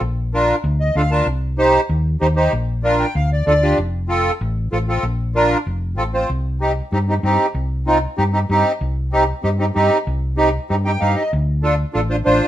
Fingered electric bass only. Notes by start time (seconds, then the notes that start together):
0.01 A#1
0.64 D2
0.95 D2
1.26 C2
1.89 D#2
2.21 D#2
2.53 A#1
3.15 D2
3.47 D2
3.78 F1
4.41 A1
4.72 A1
5.03 A#1
5.66 F1
5.98 A1
6.30 C2
6.92 G2
7.23 G2
7.55 C2
8.18 G2
8.50 G2
8.81 C2
9.44 G2
9.76 G2
10.07 C2
10.70 G2
11.02 G2
11.33 D2
11.95 A1
12.27 A1